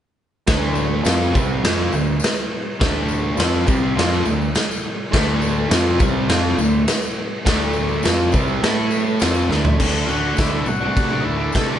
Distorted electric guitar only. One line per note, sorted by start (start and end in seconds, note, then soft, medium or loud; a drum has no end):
0.47 1.04 D3 loud
0.47 1.04 A3 loud
0.47 1.05 D4 loud
1.04 1.33 F3 medium
1.04 1.33 C4 loud
1.04 1.33 F4 medium
1.34 1.62 C3 medium
1.34 1.62 G3 medium
1.34 1.63 C4 medium
1.63 1.91 F3 medium
1.63 1.92 C4 loud
1.63 1.92 F4 loud
1.94 2.16 D3 medium
1.94 2.16 A3 medium
2.80 3.36 D3 medium
2.80 3.37 A3 loud
2.80 3.38 D4 loud
3.37 3.65 F3 medium
3.37 3.66 C4 medium
3.37 3.66 F4 medium
3.65 3.94 C3 medium
3.65 3.95 G3 medium
3.65 3.95 C4 medium
3.96 4.25 F3 medium
3.96 4.25 C4 medium
3.96 4.25 F4 loud
4.26 4.49 D3 medium
4.26 4.49 A3 medium
5.12 5.70 D3 medium
5.12 5.70 A3 medium
5.12 5.70 D4 loud
5.70 5.99 F3 loud
5.70 5.99 C4 medium
5.70 6.00 F4 loud
6.00 6.28 C3 medium
6.00 6.29 G3 medium
6.00 6.28 C4 loud
6.29 6.57 F3 loud
6.29 6.58 C4 loud
6.29 6.58 F4 loud
6.58 6.82 D3 medium
6.58 6.82 A3 medium
7.45 8.03 D3 loud
7.45 8.04 A3 loud
7.45 8.04 D4 loud
8.04 8.33 F3 medium
8.04 8.33 C4 medium
8.04 8.33 F4 loud
8.33 8.62 C3 medium
8.33 8.62 G3 medium
8.33 8.62 C4 medium
8.63 9.21 A3 medium
8.63 9.21 E4 medium
8.63 9.21 A4 loud
9.21 9.48 F3 medium
9.21 9.50 C4 medium
9.21 9.51 F4 loud
9.49 9.78 D3 loud
9.49 9.79 A3 medium
9.49 9.79 D4 loud
9.79 10.07 D3 medium
9.79 10.09 A3 medium
9.83 10.11 D4 loud
10.07 10.36 D3 medium
10.07 10.39 A3 medium
10.11 10.41 D4 medium
10.37 10.67 D3 medium
10.37 10.56 A3 medium
10.41 10.51 D4 loud
10.52 10.68 D4 medium
10.56 10.68 A3 soft
10.68 muted distorted electric guitar stroke soft
10.81 11.09 D4 medium
10.85 11.13 A3 medium
11.09 11.38 D4 medium
11.13 11.42 A3 medium
11.38 11.58 D4 medium
11.43 11.56 A3 medium
11.54 11.79 D3 medium
11.54 11.73 A3 medium
11.58 11.68 D4 medium
11.69 11.79 D4 medium
11.73 11.79 A3 medium